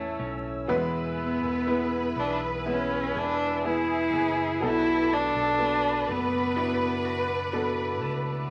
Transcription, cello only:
Already playing: A3
1.21 B3
2.19 D4
2.69 C#4
3.18 D4
3.68 E4
4.65 E4
5.13 D4
6.12 B3

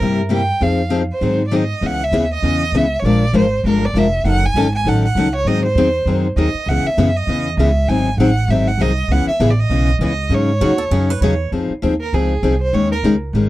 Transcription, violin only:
Already playing: A#4
0.33 G5
0.63 F5
1.12 C5
1.48 D5
1.56 D#5
1.87 F#5
2.04 E5
2.34 D#5
2.77 E5
2.99 C#5
3.05 D5
3.38 C5
3.68 A#4
3.85 D5
3.98 E5
4.27 F#5
4.45 G#5
4.75 G#5
4.89 F#5
5.05 F#5
5.36 C#5
5.48 D#5
5.66 C5
6.38 D#5
6.69 F#5
6.87 E5
7.17 D#5
7.59 E5
7.88 G#5
8.21 F#5
8.50 E5
8.68 F#5
8.82 D#5
9.12 F#5
9.28 E5
9.51 D5
9.60 D#5
10.03 D#5
10.35 C#5
12.01 A#4
12.14 G#4
12.62 C5
12.74 C#5
12.92 A#4

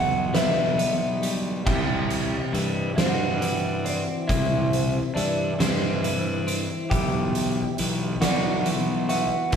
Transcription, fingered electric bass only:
Already playing: B1
1.67 C2
2.53 G2
2.97 G2
4.30 C2
5.16 G2
5.60 G2
6.91 B1
7.79 B1
8.23 B1
9.53 B1

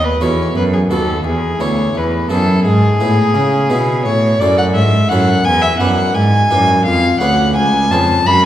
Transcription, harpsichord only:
Already playing: D#2
0.21 E2 B3 F#4 A4
0.56 F#2
0.91 D#2 B3 F#4 A4
1.25 E2
1.60 D2 B3 E4 G#4
1.95 E2
2.30 F#2 B3 E4 G#4
2.65 G#2
3.00 A2 B3 E4 G#4
3.34 C#3
3.70 B2 B3 E4 G#4
4.06 A2
4.41 F#2 C#4 E4 A4
4.75 G#2
5.11 F#2 C#4 E4 A4
5.46 E2
5.80 F#2 D4 E4 B4
6.15 G#2
6.51 F#2 D4 E4 B4
6.86 F2
7.20 D2 C#4 G#4 B4
7.56 C#2
7.92 F2 C#4 G#4 B4
8.27 F#2

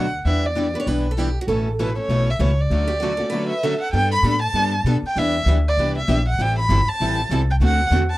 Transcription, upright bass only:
Already playing: D2
0.25 E2
0.87 B1
1.47 A1
2.08 B1
2.39 C#2
2.70 D2
3.93 G2
4.23 A2
4.53 G2
4.84 B2
5.02 muted upright bass stroke
5.16 E2
5.46 D2
5.77 C2
6.08 A#1
6.39 A1
6.69 G1
6.87 muted upright bass stroke
7.00 A1
7.29 C2
7.60 D2
7.90 E2

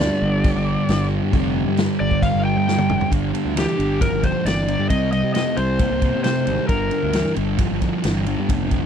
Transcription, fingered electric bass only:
0.22 G1
0.56 G1
0.89 G1
1.23 G2
1.34 F1
1.68 G2
2.01 G1
2.35 G1
2.57 G2
2.90 F1
3.12 G1
3.45 D2
3.79 G1
4.12 G1
4.45 G1
4.79 G2
4.91 C2
5.23 C3
5.57 C2
5.91 C2
6.14 C3
6.47 G#1
6.69 G1
7.03 D2
7.37 G1
7.71 G1
8.05 G1
8.39 G2
8.50 F1

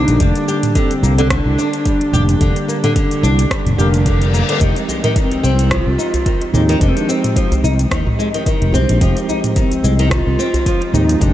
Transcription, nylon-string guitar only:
Already playing: D4
0.21 G3
0.48 G4
0.75 D3
1.03 A#3
1.18 D3
1.31 D3
1.58 D4
1.86 G3
2.13 G4
2.41 D3
2.68 A#3
2.84 D3
2.96 D3
3.23 D4
3.51 G3
3.78 G4
4.06 D3
4.34 A#3
4.49 D3
4.61 D#3
4.88 G#3
5.04 D#3
5.16 D#3
5.43 C4
5.71 F3
5.98 D#4
6.26 D#3
6.54 G#3
6.69 D#3
6.81 D#3
7.09 C4
7.36 F3
7.64 D#4
7.91 D#3
8.19 G#3
8.34 D#3
8.47 D#3
8.74 C4
9.01 F3
9.29 D#4
9.56 D#3
9.84 G#3
9.99 D#3
10.11 D#3
10.39 C4
10.66 F3
10.94 D#4
11.21 D#3

